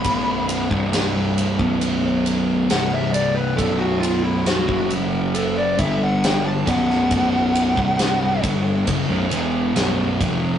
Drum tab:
RD |x-x-x-x-x-x-x-x-|x-x-x-x-x-x-x-x-|x-x-x-x-x-x-x-x-|
SD |----o-------o---|----o-------o--o|----o-------o---|
BD |o--o---o--------|o----o----o---o-|o--o--o-o-----o-|